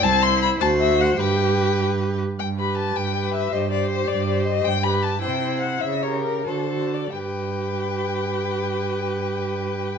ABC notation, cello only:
X:1
M:6/8
L:1/8
Q:3/8=101
K:G
V:1 name="Cello" clef=bass
C,,3 D,,3 | G,,4- G,, z | G,,3 G,,3 | G,,3 G,,3 |
G,,3 C,3 | ^C,3 D,3 | G,,6- | G,,6 |]